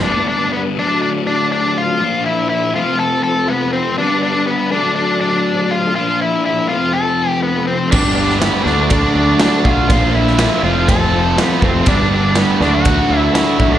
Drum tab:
CC |----------------|----------------|----------------|----------------|
RD |----------------|----------------|----------------|----------------|
SD |----------------|----------------|----------------|----------------|
BD |----------------|----------------|----------------|----------------|

CC |x---------------|----------------|----------------|
RD |----b---b---b---|b---b---b---b---|b---b---b---b---|
SD |---oo-o-----o---|---oo-------o---|----o-o-----o---|
BD |o-------o-----o-|o-------o-----o-|o-------o-----o-|